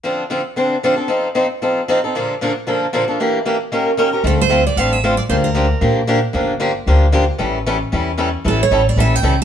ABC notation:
X:1
M:4/4
L:1/8
Q:"Swing" 1/4=229
K:Dm
V:1 name="Steel-string acoustic guitar"
z8 | z8 | z8 | z8 |
A c2 d f e2 d | c B4 z3 | z8 | z8 |
A ^c2 d e g2 z |]
V:2 name="Steel-string acoustic guitar"
[D,F,CDA] z [D,F,CDA] z [D,F,CDA] z [D,F,CDA] [CDA] | [F,C_EA] z [F,CEA] z [F,CEA] z [F,CEA] [CEA] | [B,,D,F,B,DA] z [B,,D,F,B,DA] z [B,,D,F,B,DA] z [B,,D,F,B,DA] [F,B,DA] | [E,B,DG] z [E,B,DG] z [_E,B,_DGB] z [E,B,DGB] [DGB] |
[D,A,CFA] z [D,A,CFA] z [D,A,CFA] z [D,A,CFA] z | [D,F,B,DG] z [D,F,B,DG] z [D,F,B,DG] z [D,F,B,DG] z | [D,F,B,DG] z [D,F,B,DG] z [D,F,B,DG] z [D,F,B,DG] z | [E,G,^CEA] z [E,G,CEA] z [E,G,CEA] z [E,G,CEA] z |
[E,G,^CEA] z [E,G,CEA] z [E,G,CEA] z [E,G,CEA] z |]
V:3 name="Upright bass" clef=bass
z8 | z8 | z8 | z8 |
D,,4 A,,,4 | D,,4 B,,4 | G,,,4 D,,4 | A,,,4 E,,4 |
A,,,2 A,,,2 B,,,2 ^C,,2 |]